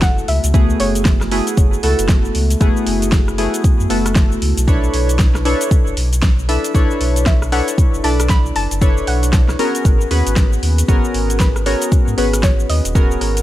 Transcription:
Already playing: sub bass F#1, synth keys A3 B3 E4 F#4 A4
0.02 synth pluck F#5, kick, snare, closed hi-hat, cabasa
0.18 cabasa
0.28 sub bass C#2, synth pluck E5, open hi-hat
0.44 sub bass C#2, closed hi-hat, cabasa
0.54 synth keys A3 B3 E4 F#4 G#4, kick, closed hi-hat, cabasa
0.70 cabasa
0.80 sub bass F#1, synth pluck C#5, open hi-hat
0.95 closed hi-hat, cabasa
1.05 kick, snare, closed hi-hat, cabasa
1.21 cross-stick, snare, cabasa
1.31 synth keys A3 B3 E4 F#4 G#4, open hi-hat
1.47 closed hi-hat, cabasa
1.57 sub bass F#1, kick, closed hi-hat, cabasa
1.73 cabasa
1.83 sub bass C#2, synth keys A3 B3 E4 F#4 A4, open hi-hat
1.99 sub bass F#1, closed hi-hat, cabasa
2.09 kick, snare, closed hi-hat, cabasa
2.25 cabasa
2.35 sub bass C#2, open hi-hat
2.50 closed hi-hat, cabasa
2.60 sub bass F#1, synth keys A3 B3 E4 F#4 G#4, kick, closed hi-hat, cabasa
2.77 cabasa
2.87 sub bass F#1, open hi-hat
3.02 closed hi-hat, cabasa
3.12 kick, snare, closed hi-hat, cabasa
3.28 cross-stick, cabasa
3.38 synth keys A3 B3 E4 F#4 G#4, open hi-hat
3.54 closed hi-hat, cabasa
3.64 kick, closed hi-hat, cabasa
3.80 sub bass F#2, cabasa
3.90 sub bass F#1, synth keys A3 B3 E4 F#4 A4, open hi-hat
4.06 cross-stick, closed hi-hat, cabasa
4.15 kick, snare, closed hi-hat, cabasa
4.32 cabasa
4.42 sub bass C#2, open hi-hat
4.57 sub bass B1, closed hi-hat, cabasa
4.67 synth keys D4 E4 A4 B4 C#5, kick, closed hi-hat, cabasa
4.84 cabasa
4.94 sub bass B1, open hi-hat
5.09 closed hi-hat, cabasa
5.19 kick, snare, closed hi-hat, cabasa
5.35 cross-stick, snare, cabasa
5.45 synth keys D4 E4 A4 B4 C#5, open hi-hat
5.61 closed hi-hat, cabasa
5.71 kick, closed hi-hat, cabasa
5.87 sub bass F#1, cabasa
5.97 sub bass B1, open hi-hat
6.13 closed hi-hat, cabasa
6.22 kick, snare, closed hi-hat, cabasa
6.39 cabasa
6.49 synth keys D4 E4 A4 B4 E5, open hi-hat
6.64 closed hi-hat, cabasa
6.74 sub bass B1, synth keys D4 E4 A4 B4 C#5, kick, closed hi-hat, cabasa
6.91 cabasa
7.00 sub bass B1, open hi-hat
7.16 closed hi-hat, cabasa
7.26 synth pluck E5, kick, snare, closed hi-hat, cabasa
7.42 cross-stick, cabasa
7.52 synth keys D4 E4 A4 B4 C#5, synth pluck F#5, open hi-hat
7.68 closed hi-hat, cabasa
7.78 kick, closed hi-hat, cabasa
7.94 sub bass F#1, cabasa
8.04 sub bass B1, synth keys D4 E4 A4 B4 D5, synth pluck A5, open hi-hat
8.20 cross-stick, closed hi-hat, cabasa
8.29 synth pluck B5, kick, snare, closed hi-hat, cabasa
8.46 cabasa
8.56 sub bass F#1, synth pluck A5, open hi-hat
8.71 sub bass F#1, closed hi-hat, cabasa
8.81 synth keys D4 E4 A4 B4 C#5, kick, closed hi-hat, cabasa
8.97 cabasa
9.07 sub bass B1, synth pluck F#5, open hi-hat
9.23 closed hi-hat, cabasa
9.33 kick, snare, closed hi-hat, cabasa
9.48 cross-stick, snare, cabasa
9.59 synth keys B3 C#4 F#4 G#4 A#4, open hi-hat
9.75 closed hi-hat, cabasa
9.85 sub bass G#1, kick, closed hi-hat, cabasa
10.01 cabasa
10.11 sub bass D#2, synth keys B3 C#4 F#4 G#4 B4, open hi-hat
10.27 sub bass G#1, closed hi-hat, cabasa
10.36 kick, snare, closed hi-hat, cabasa
10.53 cabasa
10.63 sub bass D#2, open hi-hat
10.78 closed hi-hat, cabasa
10.88 sub bass G#1, synth keys B3 C#4 F#4 G#4 A#4, kick, closed hi-hat, cabasa
11.05 cabasa
11.14 sub bass G#1, open hi-hat
11.30 closed hi-hat, cabasa
11.40 synth pluck B4, kick, snare, closed hi-hat, cabasa
11.56 cross-stick, cabasa
11.66 synth keys B3 C#4 F#4 G#4 A#4, synth pluck C#5, open hi-hat
11.82 closed hi-hat, cabasa
11.92 kick, closed hi-hat, cabasa
12.08 sub bass G#2, cabasa
12.17 sub bass G#1, synth keys B3 C#4 F#4 G#4 B4, open hi-hat
12.33 cross-stick, closed hi-hat, cabasa
12.43 synth pluck C#5, kick, snare, closed hi-hat, cabasa
12.60 cabasa
12.69 sub bass D#2, synth pluck D#5, open hi-hat
12.85 sub bass D#1, closed hi-hat, cabasa
12.95 synth keys B3 C#4 F#4 G#4 A#4, kick, closed hi-hat, cabasa
13.11 cabasa
13.21 sub bass G#1, cross-stick, open hi-hat
13.37 closed hi-hat, cabasa

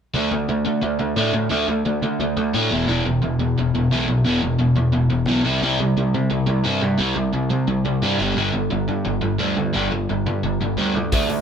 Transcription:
0.14 picked electric bass D2, overdriven electric guitar D3 A3 D4
0.31 picked electric bass D2, overdriven electric guitar D3 A3
0.49 picked electric bass D2, overdriven electric guitar D3 A3
0.65 overdriven electric guitar D3 A3, picked electric bass D3
0.82 picked electric bass D2, overdriven electric guitar D3 A3
0.99 picked electric bass D2, overdriven electric guitar D3 A3
1.16 picked electric bass A2, overdriven electric guitar D3 A3 D4
1.33 picked electric bass A2, overdriven electric guitar D3 A3
1.50 picked electric bass D2, overdriven electric guitar D3 A3 D4
1.68 picked electric bass D2, overdriven electric guitar D3 A3
1.85 picked electric bass D2, overdriven electric guitar D3 A3
2.02 picked electric bass D3, overdriven electric guitar D3 A3
2.19 picked electric bass D2, overdriven electric guitar D3 A3
2.37 picked electric bass D2, overdriven electric guitar D3 A3
2.54 picked electric bass A2, overdriven electric guitar D3 A3 D4
2.71 picked electric bass E1, overdriven electric guitar E2 B2 E3
2.88 picked electric bass E1, overdriven electric guitar E2 B2 E3
3.05 picked electric bass E1, overdriven electric guitar E2 B2
3.22 picked electric bass E1, overdriven electric guitar E2 B2
3.39 picked electric bass E2, overdriven electric guitar E2 B2
3.57 picked electric bass E1, overdriven electric guitar E2 B2
3.74 picked electric bass E1, overdriven electric guitar E2 B2
3.91 picked electric bass B1, overdriven electric guitar E2 B2 E3
4.08 picked electric bass B1, overdriven electric guitar E2 B2
4.25 picked electric bass E1, overdriven electric guitar E2 B2 E3
4.42 picked electric bass E1, overdriven electric guitar E2 B2
4.59 picked electric bass E1, overdriven electric guitar E2 B2
4.76 overdriven electric guitar E2 B2, picked electric bass E2
4.93 picked electric bass E1, overdriven electric guitar E2 B2
5.10 picked electric bass E1, overdriven electric guitar E2 B2
5.27 picked electric bass B1, overdriven electric guitar E2 B2 E3
5.44 picked electric bass C2, overdriven electric guitar C3 G3 C4
5.62 picked electric bass C2, overdriven electric guitar C3 G3 C4
5.79 picked electric bass C2, overdriven electric guitar C3 G3
5.97 picked electric bass C2, overdriven electric guitar C3 G3
6.14 overdriven electric guitar C3 G3, picked electric bass C3
6.30 picked electric bass C2, overdriven electric guitar C3 G3
6.47 picked electric bass C2, overdriven electric guitar C3 G3
6.64 picked electric bass G2, overdriven electric guitar C3 G3 C4
6.82 picked electric bass G2, overdriven electric guitar C3 G3
6.98 picked electric bass C2, overdriven electric guitar C3 G3 C4
7.16 picked electric bass C2, overdriven electric guitar C3 G3
7.33 picked electric bass C2, overdriven electric guitar C3 G3
7.50 overdriven electric guitar C3 G3, picked electric bass C3
7.68 picked electric bass C2, overdriven electric guitar C3 G3
7.85 picked electric bass C2, overdriven electric guitar C3 G3
8.02 picked electric bass G2, overdriven electric guitar C3 G3 C4
8.19 picked electric bass G1, overdriven electric guitar G2 D3 G3
8.36 picked electric bass G1, overdriven electric guitar G2 D3 G3
8.53 picked electric bass G1, overdriven electric guitar G2 D3
8.71 picked electric bass G1, overdriven electric guitar G2 D3
8.88 overdriven electric guitar G2 D3, picked electric bass G2
9.05 picked electric bass G1, overdriven electric guitar G2 D3
9.21 picked electric bass G1, overdriven electric guitar G2 D3
9.39 picked electric bass D2, overdriven electric guitar G2 D3 G3
9.57 picked electric bass D2, overdriven electric guitar G2 D3
9.74 picked electric bass G1, overdriven electric guitar G2 D3 G3
9.92 picked electric bass G1, overdriven electric guitar G2 D3
10.09 picked electric bass G1, overdriven electric guitar G2 D3
10.26 picked electric bass G2, overdriven electric guitar G2 D3
10.43 picked electric bass G1, overdriven electric guitar G2 D3
10.60 picked electric bass G1, overdriven electric guitar G2 D3
10.77 picked electric bass D2, overdriven electric guitar G2 D3 G3
10.95 picked electric bass D2, overdriven electric guitar G2 D3
11.12 picked electric bass D2, overdriven electric guitar D3 A3 D4, kick, open hi-hat
11.29 picked electric bass D2, overdriven electric guitar D3 A3, open hi-hat

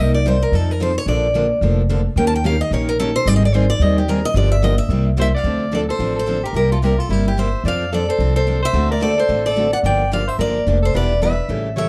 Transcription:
0.00 upright bass C2, steel-string acoustic guitar C3 G3 A#3 D#4 G4 D#5
0.14 steel-string acoustic guitar D5
0.25 steel-string acoustic guitar C3 G3 A#3 D#4 G4 C5
0.42 steel-string acoustic guitar A#4
0.52 upright bass F2, steel-string acoustic guitar F3 C4 D#4 A4
0.71 steel-string acoustic guitar A#4
0.80 steel-string acoustic guitar F3 C4 D#4 A4 C5
0.98 steel-string acoustic guitar C#5
1.06 upright bass A#1, steel-string acoustic guitar D3 F3 A#3 D4 A4 D5
1.35 steel-string acoustic guitar D3 F3 A#3 D4 A4
1.61 upright bass F1, steel-string acoustic guitar D3 F3 A#3 D4 A4
1.89 steel-string acoustic guitar D3 F3 A#3 D4 A4
2.16 upright bass D#2, steel-string acoustic guitar D#3 A#3 C#4 G4 A#4 G5
2.27 steel-string acoustic guitar A5
2.36 steel-string acoustic guitar G5
2.44 steel-string acoustic guitar D#3 A#3 C#4 G4 A#4 F5
2.61 steel-string acoustic guitar D#5
2.71 upright bass A#1, steel-string acoustic guitar D#3 A#3 C#4 G4 A#4 C#5
2.89 steel-string acoustic guitar A#4
3.00 steel-string acoustic guitar D#3 A#3 C#4 G4 A4 A#4
3.16 steel-string acoustic guitar C5
3.26 upright bass G#1, steel-string acoustic guitar D#3 G3 C4 D#4 G#4 D5
3.36 steel-string acoustic guitar D#5
3.45 steel-string acoustic guitar D5
3.54 steel-string acoustic guitar D#3 G3 C4 D#4 G#4 C5
3.70 steel-string acoustic guitar D5
3.79 upright bass D#2, steel-string acoustic guitar D#3 G3 C4 D#4 G#4 D#5
3.98 steel-string acoustic guitar G4
4.08 steel-string acoustic guitar D#3 G3 C4 D#4 G#4 A#4
4.25 steel-string acoustic guitar D#5
4.34 upright bass G1, steel-string acoustic guitar D3 F3 A#3 D4 G4 D5
4.52 steel-string acoustic guitar E5
4.63 steel-string acoustic guitar D3 F3 A#3 D4 G4 D#5
4.78 steel-string acoustic guitar E5
4.89 upright bass C2, steel-string acoustic guitar C3 G3 A#3 E4 G4
5.17 steel-string acoustic guitar C3 G3 A#3 E4 G4, soprano saxophone C5
5.21 steel-string acoustic guitar E5
5.34 soprano saxophone D5, steel-string acoustic guitar F5
5.44 upright bass D2, steel-string acoustic guitar D3 F3 C4 D4 A4
5.72 steel-string acoustic guitar D3 F3 C4 D4 A4 D5
5.76 soprano saxophone A4
5.89 soprano saxophone A4, steel-string acoustic guitar C5
5.99 upright bass A1, steel-string acoustic guitar D3 F3 C4 D4 A4
6.16 soprano saxophone A4, steel-string acoustic guitar C5
6.26 steel-string acoustic guitar D3 F3 C4 D4 A4
6.43 soprano saxophone G4, steel-string acoustic guitar A#4
6.53 upright bass C2, steel-string acoustic guitar C3 G3 A#3 E4 G4 A#4, soprano saxophone G4
6.72 soprano saxophone F4, steel-string acoustic guitar A4
6.82 steel-string acoustic guitar C3 G3 A#3 E4 G4 A#4, soprano saxophone G4
6.98 soprano saxophone F4, steel-string acoustic guitar A4
7.09 upright bass G1, steel-string acoustic guitar C3 G3 A#3 E4 G4, soprano saxophone E4
7.27 soprano saxophone E4, steel-string acoustic guitar G4
7.38 steel-string acoustic guitar C3 G3 A#3 E4 G4 E5, soprano saxophone C5
7.64 upright bass F2, steel-string acoustic guitar F3 C4 D4 A4, soprano saxophone D5
7.68 steel-string acoustic guitar F5
7.93 steel-string acoustic guitar F3 C4 D4 A4 D5, soprano saxophone A4
8.08 soprano saxophone A4, steel-string acoustic guitar C5
8.18 upright bass C2, steel-string acoustic guitar F3 C4 D4 A4
8.36 soprano saxophone A4, steel-string acoustic guitar C5
8.47 steel-string acoustic guitar F3 C4 D4 A4
8.63 soprano saxophone C5, steel-string acoustic guitar E5
8.73 upright bass D2, steel-string acoustic guitar D3 A3 C4 F#4 A4
8.91 soprano saxophone A#4, steel-string acoustic guitar D5
9.00 steel-string acoustic guitar D3 A3 C4 F#4 A4 D5, soprano saxophone A4
9.18 soprano saxophone A4, steel-string acoustic guitar C5
9.29 upright bass A1, steel-string acoustic guitar D3 A3 C4 F#4 A4
9.46 soprano saxophone A4, steel-string acoustic guitar D5
9.55 steel-string acoustic guitar D3 A3 C4 F#4 A4
9.72 soprano saxophone D5, steel-string acoustic guitar F#5
9.83 upright bass G1, steel-string acoustic guitar D3 F3 A#3 D4 G4 G5, soprano saxophone D5
10.12 steel-string acoustic guitar D3 F3 A#3 D4 G4 F5, soprano saxophone D5
10.27 soprano saxophone C5, steel-string acoustic guitar E5
10.39 upright bass G1, steel-string acoustic guitar D3 F3 A#3 D4 G4 D5, soprano saxophone A#4
10.66 upright bass F1, steel-string acoustic guitar D3 F3 A#3 D4 G4
10.83 soprano saxophone A4, steel-string acoustic guitar C5
10.94 upright bass E1, steel-string acoustic guitar E3 G3 B3 D4 E4 G4 B4 D5, soprano saxophone B4
11.22 steel-string acoustic guitar E3 G3 B3 D4 E4 G4 B4 E5, soprano saxophone B4
11.49 upright bass A1, steel-string acoustic guitar C#3 E3 G3 A3 C#4 E4 G4 A4
11.76 steel-string acoustic guitar C#3 E3 G3 A3 C#4 E4 G4 A4 E5, soprano saxophone C#5

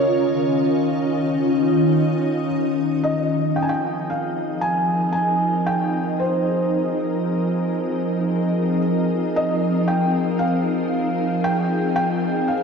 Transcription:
Already playing: ambient pad D#3 C#4 F4 A#4 D#5, felt piano C#5
0.34 ambient pad D#4
3.04 ambient pad F3, felt piano D#5
3.23 ambient pad C4
3.31 ambient pad A#4
3.56 felt piano G5
3.62 ambient pad G#4, felt piano G#5
3.69 felt piano G5
4.10 felt piano F5
4.61 felt piano G#5
5.13 felt piano G#5
5.66 felt piano G5
6.20 felt piano C5
9.36 felt piano D#5
9.88 felt piano G5
10.39 felt piano F5
11.44 felt piano G5
11.96 felt piano G5
12.48 felt piano F5

